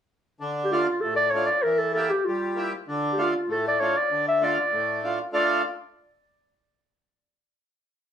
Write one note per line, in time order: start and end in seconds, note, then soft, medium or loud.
0.40 0.86 D3 medium
0.64 0.73 G4 medium
0.71 0.87 A3 medium
0.71 0.87 D4 medium
0.71 1.02 F4 medium
0.71 0.87 F4 medium
1.01 1.49 A2 medium
1.01 1.15 A4 medium
1.16 1.32 D5 loud
1.31 1.49 A3 medium
1.31 1.49 D4 soft
1.31 1.48 C#5 medium
1.35 1.50 F4 medium
1.46 1.64 D5 medium
1.63 2.11 E3 medium
1.63 1.80 A#4 medium
1.79 1.93 A4 medium
1.93 2.11 A#3 medium
1.93 2.11 E4 medium
1.93 2.12 G4 medium
1.93 2.11 A4 medium
2.10 2.27 G4 medium
2.25 2.73 G3 medium
2.25 2.72 F4 medium
2.56 2.72 A#3 medium
2.56 2.72 E4 soft
2.56 2.73 G4 medium
2.88 3.34 D3 medium
3.13 3.24 G4 medium
3.17 3.33 A3 medium
3.17 3.34 D4 medium
3.17 3.34 F4 medium
3.23 3.51 F4 medium
3.48 3.95 A2 medium
3.48 3.65 A4 medium
3.68 3.82 D5 medium
3.80 3.96 A3 medium
3.80 3.96 D4 medium
3.80 3.96 F4 medium
3.80 3.99 C#5 medium
3.97 4.27 D5 medium
4.11 4.57 D3 medium
4.28 4.45 E5 medium
4.41 4.57 A3 medium
4.41 4.57 D4 medium
4.41 4.58 F4 medium
4.41 5.04 D5 medium
4.73 5.19 A2 medium
5.03 5.19 A3 medium
5.03 5.19 D4 medium
5.03 5.19 F4 medium
5.33 5.62 A3 medium
5.33 5.62 D4 medium
5.33 5.62 F4 medium
5.33 5.63 D5 medium